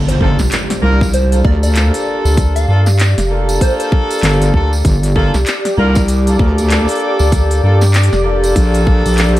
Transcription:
Already playing: wobble bass G1, analog synth pad G4, impact
0.08 digital synth lead C5, closed hi-hat, tambourine
0.21 horn section A#3 D4 F4 A4, analog synth pad D5, kick
0.39 analog synth bass C2, snare, tambourine
0.52 clap, closed hi-hat, tambourine
0.70 snare, closed hi-hat, tambourine
0.82 wobble bass C2, horn section A#3 D4 F4 A#4
1.01 kick, tambourine
1.14 digital synth lead C5, closed hi-hat, tambourine
1.32 horn section A#3 D4 F4 A4, closed hi-hat, tambourine
1.44 wobble bass D2, horn section A#3 D4 F4 A4, digital synth lead D5, kick
1.63 digital synth lead D5, closed hi-hat, tambourine
1.75 clap, closed hi-hat, tambourine
1.94 closed hi-hat, tambourine
2.25 analog synth bass D2, tambourine
2.37 kick, closed hi-hat, tambourine
2.56 digital synth lead F5, closed hi-hat, tambourine
2.68 analog synth bass G2, horn section A#3 D4 F4 A4
2.86 snare, tambourine
2.99 clap, closed hi-hat, tambourine
3.18 analog synth bass F1, snare, closed hi-hat, tambourine
3.30 horn section A#3 D4 F4 A4
3.49 closed hi-hat, tambourine
3.61 digital synth lead C5, kick, closed hi-hat, tambourine
3.80 digital synth lead C5, closed hi-hat, tambourine
3.92 kick
4.10 closed hi-hat, tambourine
4.13 closed hi-hat
4.19 wobble bass G1, closed hi-hat
4.23 clap, closed hi-hat, tambourine
4.33 closed hi-hat
4.42 closed hi-hat, tambourine
4.54 analog synth bass D2, horn section A#3 D4 F4 A4, kick
4.73 tambourine
4.85 wobble bass G1, kick, closed hi-hat, tambourine
5.03 closed hi-hat, tambourine
5.16 horn section A#3 D4 F4 A4, kick
5.34 analog synth bass C2, analog synth pad D6, snare, tambourine
5.46 clap, closed hi-hat, tambourine
5.65 snare, closed hi-hat, tambourine
5.77 wobble bass C2, horn section A#3 D4 F4 A#4
5.95 kick, closed hi-hat, tambourine
6.08 closed hi-hat, tambourine
6.27 horn section A#3 D4 F4 A4, closed hi-hat, tambourine
6.39 wobble bass D2, horn section A#3 D4 F4 A4, kick
6.58 closed hi-hat, tambourine
6.70 clap, closed hi-hat, tambourine
6.88 closed hi-hat, tambourine
6.91 closed hi-hat
6.95 closed hi-hat
6.97 closed hi-hat
7.00 closed hi-hat
7.19 analog synth bass D2, tambourine
7.32 kick, closed hi-hat, tambourine
7.51 closed hi-hat, tambourine
7.63 analog synth bass G2, horn section A#3 D4 F4 A4
7.81 snare, tambourine
7.94 clap, closed hi-hat, tambourine
8.03 closed hi-hat
8.13 analog synth bass F1, snare, tambourine
8.25 horn section A#3 D4 F4 A4
8.44 closed hi-hat, tambourine
8.56 wobble bass A#1, kick, closed hi-hat, tambourine
8.74 closed hi-hat, tambourine
8.87 kick
9.06 wobble bass A#1, closed hi-hat, tambourine
9.08 closed hi-hat
9.14 closed hi-hat, tambourine
9.18 clap, closed hi-hat
9.28 closed hi-hat
9.37 closed hi-hat

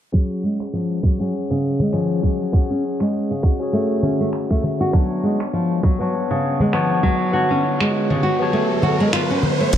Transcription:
0.12 nylon-string guitar F#3, tine electric piano C#4 G#4 C#5 F#5, kick
0.31 darbuka ka
0.43 nylon-string guitar G#3
0.60 finger snap, darbuka ka
0.73 nylon-string guitar F3
1.03 nylon-string guitar F#3, kick
1.19 nylon-string guitar F#3, tine electric piano C#4 G#4 C#5 F#5
1.51 nylon-string guitar C#3, darbuka tek
1.80 nylon-string guitar G#3, darbuka dum
1.93 nylon-string guitar F3, tine electric piano C#4 G#4 C#5 F#5, finger snap
2.10 darbuka ka
2.23 nylon-string guitar F#3, kick
2.40 darbuka ka
2.52 tine electric piano C#4 G#4 C#5 F#5, nylon-string guitar F#4, kick
2.70 nylon-string guitar C#4
3.00 nylon-string guitar G#3, finger snap, darbuka ka
3.31 nylon-string guitar C#3
3.43 nylon-string guitar F#4, kick
3.60 tine electric piano C#4 F#4 G#4 C#5
3.73 nylon-string guitar A3
4.03 nylon-string guitar C#4, darbuka tek, darbuka dum
4.21 nylon-string guitar A3
4.33 finger snap
4.51 nylon-string guitar A3, kick, darbuka ka
4.63 darbuka tek, darbuka dum
4.81 nylon-string guitar F#4
4.92 nylon-string guitar F#3, tine electric piano B3 D4 C#5 F#5 A5, kick, riser
5.11 darbuka ka
5.23 nylon-string guitar G#3
5.40 finger snap, darbuka ka
5.53 nylon-string guitar F3
5.83 nylon-string guitar F#3, kick
5.99 nylon-string guitar F#3, tine electric piano B3 F#5 A5
6.03 tine electric piano C#5
6.31 nylon-string guitar C#3, darbuka tek
6.60 nylon-string guitar G#3, darbuka dum
6.72 nylon-string guitar F3, tine electric piano B3 C#5 F#5 A5, finger snap
6.90 darbuka ka
7.03 nylon-string guitar F#3, kick
7.21 darbuka ka
7.31 tine electric piano D3 B3 F#5 A5, nylon-string guitar F#4
7.36 tine electric piano C#5
7.51 nylon-string guitar C#4
7.80 nylon-string guitar G#3, finger snap, darbuka ka
8.10 nylon-string guitar C#3, darbuka dum
8.23 nylon-string guitar F#4
8.39 tine electric piano F#3 B3 C#5 A5
8.53 nylon-string guitar A3
8.82 nylon-string guitar F#4, darbuka tek, darbuka dum
9.00 nylon-string guitar G#3
9.13 nylon-string guitar F4, finger snap
9.30 nylon-string guitar C#4, darbuka ka
9.43 darbuka tek, darbuka dum
9.60 nylon-string guitar A3
9.73 analog synth bass F#1, nylon-string guitar F#3, kick, crash, shaker

